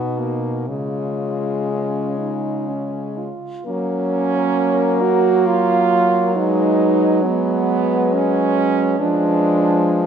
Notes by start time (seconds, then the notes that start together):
Already playing: B2 B3 D#4 F#4
0.18 A#3
0.69 C#3 G#3 C#4 F4
1.69 C#4
2.19 D#4
2.69 C#4
3.17 F4
3.65 F#3 A#3 C#4 A#4
5.02 F#4
5.47 F4
6.36 G#3 D#4 B4
7.25 G#3 B3 B4
8.13 C#4
9.00 F3 G#3 D4 B4